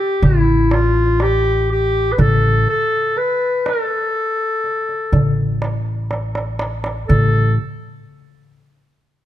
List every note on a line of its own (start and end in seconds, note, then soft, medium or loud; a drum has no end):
0.00 0.24 G4 medium
0.22 2.15 A1 medium
0.22 0.75 E4 medium
0.22 darbuka dum medium
0.71 1.24 F4 medium
0.71 darbuka tek medium
1.20 1.70 G4 medium
1.20 darbuka tek medium
1.72 2.14 G4 medium
2.12 2.21 B4 medium
2.18 2.64 A1 medium
2.18 2.68 A4 medium
2.18 darbuka dum medium
2.67 3.19 A4 medium
2.67 darbuka ka soft
3.16 3.68 B4 medium
3.16 darbuka ka soft
3.66 5.62 A4 medium
3.66 darbuka tek medium
4.64 darbuka ka soft
4.89 darbuka ka soft
5.12 7.05 A1 medium
5.12 darbuka dum medium
5.62 darbuka tek medium
6.11 darbuka tek medium
6.35 darbuka ka medium
6.59 darbuka tek medium
6.84 darbuka ka medium
7.08 7.55 A1 medium
7.08 7.54 A4 medium
7.08 darbuka dum medium